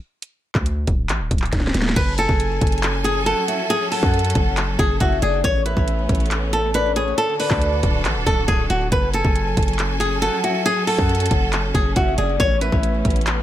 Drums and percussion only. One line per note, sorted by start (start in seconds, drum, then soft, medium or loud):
0.22 closed hi-hat medium
0.55 kick loud
0.55 clap loud
0.66 closed hi-hat medium
0.87 kick loud
0.87 closed hi-hat medium
1.09 clap loud
1.09 closed hi-hat medium
1.31 kick medium
1.31 closed hi-hat medium
1.38 clap medium
1.38 closed hi-hat medium
1.46 closed hi-hat soft
1.53 kick medium
1.53 snare medium
1.53 closed hi-hat medium
1.60 snare medium
1.67 snare medium
1.74 snare medium
1.74 closed hi-hat medium
1.82 snare loud
1.89 snare medium
1.96 kick loud
1.96 closed hi-hat medium
1.96 crash loud
2.18 closed hi-hat medium
2.29 kick loud
2.40 closed hi-hat medium
2.61 kick loud
2.61 closed hi-hat medium
2.67 closed hi-hat medium
2.72 closed hi-hat medium
2.78 closed hi-hat soft
2.83 clap loud
2.83 closed hi-hat medium
3.05 closed hi-hat medium
3.26 closed hi-hat medium
3.48 closed hi-hat medium
3.70 closed hi-hat medium
3.92 open hi-hat medium
4.03 kick loud
4.14 closed hi-hat soft
4.19 closed hi-hat medium
4.25 closed hi-hat medium
4.30 closed hi-hat medium
4.35 kick loud
4.35 closed hi-hat medium
4.57 clap loud
4.57 closed hi-hat medium
4.79 kick loud
4.79 closed hi-hat medium
5.00 kick loud
5.00 closed hi-hat medium
5.22 closed hi-hat medium
5.44 kick loud
5.44 closed hi-hat medium
5.66 closed hi-hat medium
5.77 kick loud
5.88 closed hi-hat medium
6.09 kick loud
6.09 closed hi-hat medium
6.15 closed hi-hat medium
6.20 closed hi-hat medium
6.26 closed hi-hat soft
6.31 clap loud
6.31 closed hi-hat medium
6.53 closed hi-hat medium
6.74 closed hi-hat medium
6.96 closed hi-hat medium
7.18 closed hi-hat medium
7.40 open hi-hat medium
7.51 kick loud
7.51 clap loud
7.62 closed hi-hat medium
7.83 kick loud
7.83 closed hi-hat medium
8.05 clap loud
8.05 closed hi-hat medium
8.27 kick loud
8.27 closed hi-hat medium
8.48 kick medium
8.48 closed hi-hat medium
8.70 closed hi-hat medium
8.92 kick loud
8.92 closed hi-hat medium
9.14 closed hi-hat medium
9.25 kick loud
9.35 closed hi-hat medium
9.57 kick loud
9.57 closed hi-hat medium
9.63 closed hi-hat medium
9.68 closed hi-hat medium
9.73 closed hi-hat soft
9.79 clap loud
9.79 closed hi-hat medium
10.01 closed hi-hat medium
10.22 closed hi-hat medium
10.44 closed hi-hat medium
10.66 closed hi-hat medium
10.87 open hi-hat medium
10.98 kick loud
11.09 closed hi-hat soft
11.15 closed hi-hat medium
11.20 closed hi-hat medium
11.26 closed hi-hat medium
11.31 kick loud
11.31 closed hi-hat medium
11.53 clap loud
11.53 closed hi-hat medium
11.75 kick loud
11.75 closed hi-hat medium
11.96 kick loud
11.96 closed hi-hat medium
12.18 closed hi-hat medium
12.40 kick loud
12.40 closed hi-hat medium
12.61 closed hi-hat medium
12.72 kick loud
12.83 closed hi-hat medium
13.05 kick loud
13.05 closed hi-hat medium
13.10 closed hi-hat medium
13.16 closed hi-hat medium
13.21 closed hi-hat soft
13.27 clap loud
13.27 closed hi-hat medium